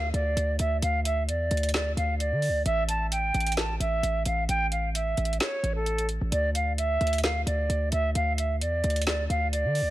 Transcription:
Already playing: D2
0.14 D2 D5, closed hi-hat
0.37 D2, closed hi-hat
0.59 D2 E5, closed hi-hat
0.82 D2 F5, closed hi-hat
1.05 E5, closed hi-hat
1.28 E2 D5, closed hi-hat
1.51 D2, closed hi-hat, open hi-hat
1.57 closed hi-hat
1.63 closed hi-hat
1.69 closed hi-hat
1.74 D5, snare, closed hi-hat
1.97 D2 F5, closed hi-hat
2.20 D5, closed hi-hat
2.32 D3
2.42 open hi-hat
2.49 D2
2.66 A1 E5, closed hi-hat
2.89 A5, closed hi-hat
3.12 G5, closed hi-hat
3.34 A1, closed hi-hat
3.40 closed hi-hat
3.47 closed hi-hat
3.52 closed hi-hat
3.57 A5, snare, closed hi-hat
3.80 A1 E5, closed hi-hat
4.03 A1, closed hi-hat
4.25 A1 F5, closed hi-hat
4.49 A1 G5, closed hi-hat
4.72 F5, closed hi-hat
4.95 E5, closed hi-hat
5.17 A1, closed hi-hat, open hi-hat
5.25 closed hi-hat
5.33 closed hi-hat
5.40 C#5, snare, closed hi-hat
5.63 A1, closed hi-hat
5.75 A4
5.86 closed hi-hat
5.98 closed hi-hat
6.09 closed hi-hat
6.21 A1
6.32 D2 D5, closed hi-hat
6.55 F5, closed hi-hat
6.78 E5, closed hi-hat
7.01 D2, closed hi-hat
7.07 closed hi-hat
7.13 closed hi-hat
7.18 closed hi-hat
7.24 F5, snare, closed hi-hat
7.47 D2 D5, closed hi-hat
7.70 D2, closed hi-hat
7.92 D2 E5, closed hi-hat
8.15 D2 F5, closed hi-hat
8.38 E5, closed hi-hat
8.61 E2 D5, closed hi-hat
8.84 D2, closed hi-hat, open hi-hat
8.90 closed hi-hat
8.96 closed hi-hat
9.02 closed hi-hat
9.07 D5, snare, closed hi-hat
9.30 D2 F5, closed hi-hat
9.53 D5, closed hi-hat
9.65 D3
9.75 open hi-hat
9.82 D2

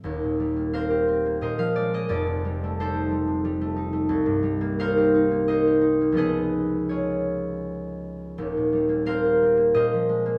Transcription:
Already playing: C4
0.04 D#1 D#2
0.24 A#2
0.40 G3
0.56 A#3
0.73 C4 A#4 C5 F5
0.90 G4
1.08 C4
1.25 A#3
1.41 A#2 A#4 C5 D#5
1.58 F3 F5
1.76 G#3 D5
1.94 A#3 D#5
2.09 F1 F2 D5
2.27 C3
2.45 G3
2.64 A3
2.80 D#4 G4 A4 C5
2.94 A3
3.11 G3
3.27 C3
3.45 G3
3.61 A3
3.76 D#4
3.93 A3
4.09 C2
4.26 G2
4.43 G3
4.61 A#3
4.79 D#4 A#4 C5 F5
4.97 G4
5.14 D#4
5.31 A#3
5.48 D#4 A#4 C5 D#5
5.66 G4
5.81 D#4
6.01 A#3
6.12 C#2 F3 B3 D#4
6.17 G#4 B4 D#5
6.89 F4 G#4 C#5
8.38 D#1 D#2
8.57 A#2
8.73 G3
8.89 A#3
9.05 C4 A#4 C5 F5
9.25 G4
9.42 C4
9.57 A#3
9.74 A#2 A#4 C5 D#5
9.93 F3
10.09 G#3
10.26 A#3

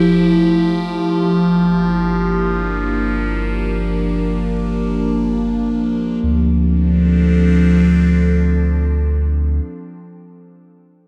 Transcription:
Already playing: F1 F3 A3 E4 G4
1.01 G1
1.21 A#3
1.61 D4
6.23 D2 F3
6.36 C4
6.50 D4
6.63 A4

